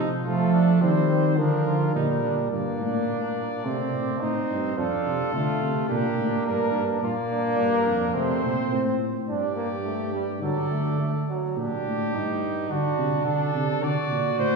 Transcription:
0.25 tuba F3, trombone A3, trumpet F4, cornet A4
0.53 trumpet D4
0.81 tuba D#3, trombone G3, trumpet C4, cornet C5
1.09 trumpet C4
1.38 tuba D3, trombone F3, trumpet D4, cornet A#4
1.67 trumpet F4
1.94 tuba A#2, trombone G3, trumpet D#4, cornet A#4
2.23 trumpet D4
2.51 tuba G2, trombone A#3, trumpet D4, cornet D5
2.80 tuba A2
3.08 tuba A#2
3.64 tuba C3, trombone A3, trumpet C4
3.93 tuba A2
4.20 tuba A2, trombone C4, trumpet D#4, cornet C5
4.50 tuba G2
4.77 tuba F2, trombone D4, trumpet F4, cornet A4
5.06 tuba C3
5.33 tuba D3, trombone A3, trumpet F4
5.62 tuba C3
5.89 tuba A#2, trombone A#3, trumpet D4, cornet G4
6.18 tuba A2
6.46 tuba G2, trumpet D4, cornet A#4
6.74 tuba G2
7.02 tuba A#2, trombone A#3, trumpet F4, cornet D5
7.31 trumpet D4
7.59 tuba G2, trumpet D4, cornet A#4
7.87 tuba F2
8.14 tuba C3, trombone A3, trumpet C4, cornet C5
8.43 tuba A#2
8.71 tuba A2, trombone C4
9.28 tuba G2, trombone D4, trumpet G4, cornet D5
9.56 trombone A#3
9.85 trombone A3
10.14 trombone G3
10.42 tuba D3, trombone F#3, trumpet A4, cornet D5
10.71 trombone A3
11.00 trombone A3
11.29 trombone F#3
11.56 tuba A#2, trumpet D4, cornet G4
11.85 tuba A2
12.13 tuba G2, trumpet D#4
12.70 tuba D3, trumpet D4, cornet F#4
12.98 tuba C3
13.25 tuba D3, cornet A4
13.55 tuba C3
13.82 tuba D3, trumpet F#4, cornet D5
14.11 tuba A#2
14.39 tuba A2, cornet C5

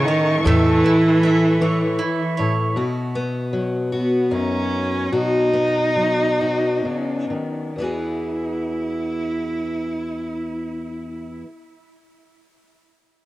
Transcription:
Already playing: steel-string acoustic guitar A2 C#4 E4 A4, mandolin A3 E5, string section A4 E5 C#6
0.05 cello D#3, mandolin C#5
0.40 cello E3
0.44 upright bass E2, steel-string acoustic guitar A2 A4, mandolin A3
0.84 steel-string acoustic guitar E3, mandolin E4
1.23 steel-string acoustic guitar E4, mandolin E5
1.61 steel-string acoustic guitar E3, mandolin C#5
1.99 mandolin E4
2.37 steel-string acoustic guitar A2, mandolin C#5
2.76 steel-string acoustic guitar B2 F#4
3.15 steel-string acoustic guitar B3
3.53 steel-string acoustic guitar F#3
3.92 cello B3, steel-string acoustic guitar F#4
4.31 steel-string acoustic guitar F#2 D#4, cello C#4
5.12 steel-string acoustic guitar B2 F#4, cello D#4
5.53 steel-string acoustic guitar B3
5.96 steel-string acoustic guitar F#3
6.41 steel-string acoustic guitar F#4
6.85 steel-string acoustic guitar C#3
7.30 steel-string acoustic guitar D#3
7.75 steel-string acoustic guitar E2 E3, cello E4
7.80 steel-string acoustic guitar B3 F#4 G#4

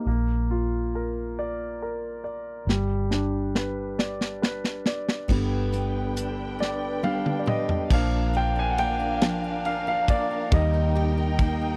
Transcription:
0.06 fingered electric bass A#1, grand piano A#3
0.51 grand piano F4
0.95 grand piano A#4
1.39 grand piano D5
1.82 grand piano A#4
2.24 grand piano D5
2.67 fingered electric bass G1, grand piano G3, snare
3.11 grand piano D4, snare
3.55 grand piano B4, snare
3.99 grand piano D5, snare
4.21 snare
4.42 grand piano B4, snare
4.64 snare
4.86 grand piano D5, snare
5.09 snare
5.28 fingered electric bass G1, string section D3 B4 G5, grand piano D3 G3 B3, steel-string acoustic guitar B3, kick, crash
5.72 steel-string acoustic guitar B3, closed hi-hat
6.16 steel-string acoustic guitar D4, closed hi-hat
6.59 steel-string acoustic guitar B3, grand piano D5, snare
7.03 grand piano G3 B3 D4 F5, steel-string acoustic guitar D4, high tom
7.26 mid tom
7.39 grand piano D5
7.46 steel-string acoustic guitar G4, grand piano D#5, mid tom
7.69 floor tom
7.90 fingered electric bass A#1, steel-string acoustic guitar F3, grand piano F3 A#3 D4 F5, string section D4 A#4 F5, kick, crash
8.11 steel-string acoustic guitar D4
8.33 steel-string acoustic guitar F4, grand piano G5, ride
8.56 steel-string acoustic guitar D4, grand piano G#5
8.71 grand piano F#5
8.78 steel-string acoustic guitar A#3, grand piano G5, ride
9.00 steel-string acoustic guitar D4
9.22 steel-string acoustic guitar F3, snare, ride
9.44 steel-string acoustic guitar D4
9.65 steel-string acoustic guitar F4, grand piano F5, ride
9.87 steel-string acoustic guitar D4, grand piano F5
10.08 steel-string acoustic guitar A#3, grand piano D5, kick, ride
10.31 steel-string acoustic guitar D4
10.52 fingered electric bass D#2, steel-string acoustic guitar D#3, grand piano G3 A#3 D#4 D#5, string section D#4 G5, kick, ride
10.74 steel-string acoustic guitar D#4
10.96 steel-string acoustic guitar G4, ride
11.18 steel-string acoustic guitar D#4
11.39 steel-string acoustic guitar A#3, kick, ride
11.62 steel-string acoustic guitar D#4

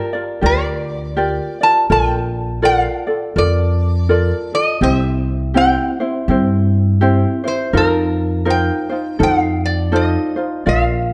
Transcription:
Already playing: ukulele F4 G4 A#4 D5, resonator guitar played with a steel bar A#4
0.13 ukulele F4 A#4 D5
0.41 upright bass D2, ukulele F4 G4 A#4 D5
0.46 resonator guitar played with a steel bar D5
1.17 ukulele F4 G4 A#4 D5
1.61 ukulele F4 A#4 D5, resonator guitar played with a steel bar A5
1.90 upright bass A#1, ukulele F4 A4 A#4 D5, resonator guitar played with a steel bar G5
2.62 ukulele F4 A4 A#4 D5, resonator guitar played with a steel bar F5
3.07 ukulele F4 A4 D5
3.36 upright bass F2, ukulele F4 A4 A#4 D5, resonator guitar played with a steel bar D5
4.09 ukulele F4 A4 A#4 D5
4.54 ukulele F4 A4, resonator guitar played with a steel bar D#5
4.81 upright bass C2, ukulele C4 E4 G4 C5, resonator guitar played with a steel bar D#5
4.94 resonator guitar played with a steel bar E5
5.54 ukulele C4 E4 G4 C5, resonator guitar played with a steel bar G5
6.00 ukulele C4 E4 C5
6.28 upright bass G2, ukulele C4 E4 G4 C5
7.01 ukulele C4 E4 G4 C5
7.44 ukulele C4 E4 C5, resonator guitar played with a steel bar C5
7.73 upright bass F2, ukulele D#4 F4 A#4 C5
7.77 resonator guitar played with a steel bar A#4
8.45 ukulele D#4 F4 A#4 C5
8.50 resonator guitar played with a steel bar G5
8.89 ukulele D#4 F4 C5
9.19 upright bass F2, ukulele D#4 F4 A4 C5
9.23 resonator guitar played with a steel bar F#5
9.40 resonator guitar played with a steel bar F5
9.66 resonator guitar played with a steel bar D5
9.92 ukulele D#4 F4 A4 C5, resonator guitar played with a steel bar D#5
10.36 ukulele D#4 F4 C5
10.66 upright bass A#1, ukulele F4 A#4 D5 F5, resonator guitar played with a steel bar F5

